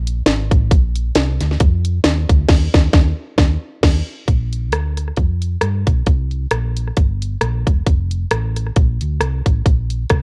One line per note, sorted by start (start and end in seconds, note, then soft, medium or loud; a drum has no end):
0.00 0.20 A#1 medium
0.07 closed hi-hat medium
0.26 0.48 G#1 loud
0.26 snare loud
0.26 closed hi-hat medium
0.51 0.68 A1 medium
0.51 kick medium
0.51 closed hi-hat medium
0.71 1.09 A#1 loud
0.71 kick loud
0.71 closed hi-hat medium
0.95 closed hi-hat medium
1.15 1.37 C2 medium
1.15 snare loud
1.15 closed hi-hat medium
1.40 1.57 D2 medium
1.40 snare soft
1.40 closed hi-hat medium
1.51 snare soft
1.60 1.98 F2 loud
1.60 kick loud
1.60 closed hi-hat loud
1.85 closed hi-hat medium
2.04 2.26 D#2 medium
2.04 snare loud
2.04 closed hi-hat loud
2.29 2.46 D2 medium
2.29 kick medium
2.29 closed hi-hat medium
2.49 2.66 D#2 medium
2.49 kick loud
2.49 snare loud
2.49 crash medium
2.74 2.88 D#2 loud
2.74 kick loud
2.74 snare loud
2.93 3.11 D#2 loud
2.93 kick loud
2.93 snare loud
3.38 3.55 D#2 loud
3.38 kick loud
3.38 snare loud
3.83 4.00 D#2 loud
3.83 kick loud
3.83 snare loud
3.83 crash medium
4.28 4.72 A#1 medium
4.28 kick medium
4.28 closed hi-hat medium
4.53 closed hi-hat medium
4.72 5.10 D2 medium
4.72 cross-stick loud
4.72 closed hi-hat medium
4.97 cross-stick soft
4.97 closed hi-hat medium
5.08 cross-stick soft
5.16 5.55 F2 medium
5.16 kick medium
5.16 closed hi-hat medium
5.42 closed hi-hat medium
5.61 5.83 G2 medium
5.61 cross-stick loud
5.61 closed hi-hat medium
5.87 6.04 B1 medium
5.87 kick medium
5.87 closed hi-hat medium
6.06 6.45 C2 medium
6.06 kick medium
6.06 closed hi-hat medium
6.31 closed hi-hat medium
6.51 6.90 A#1 medium
6.51 cross-stick loud
6.51 closed hi-hat medium
6.77 closed hi-hat medium
6.88 cross-stick soft
6.97 7.35 G1 medium
6.97 kick medium
6.97 closed hi-hat medium
7.22 closed hi-hat medium
7.41 7.63 A#1 medium
7.41 cross-stick medium
7.41 closed hi-hat medium
7.67 7.83 E1 medium
7.67 kick medium
7.67 closed hi-hat medium
7.86 8.24 F1 medium
7.86 kick medium
7.86 closed hi-hat medium
8.11 closed hi-hat medium
8.31 8.69 A1 medium
8.31 cross-stick loud
8.31 closed hi-hat medium
8.57 cross-stick soft
8.57 closed hi-hat medium
8.67 cross-stick soft
8.76 8.97 A#1 loud
8.76 kick medium
8.76 closed hi-hat medium
9.01 9.18 D2 medium
9.01 closed hi-hat medium
9.20 9.42 C2 medium
9.20 cross-stick medium
9.20 closed hi-hat medium
9.46 9.62 A1 medium
9.46 kick medium
9.46 closed hi-hat medium
9.66 10.04 A#1 medium
9.66 kick medium
9.66 closed hi-hat medium
9.90 closed hi-hat medium
10.10 10.22 C2 medium
10.10 kick medium
10.10 cross-stick loud
10.10 closed hi-hat medium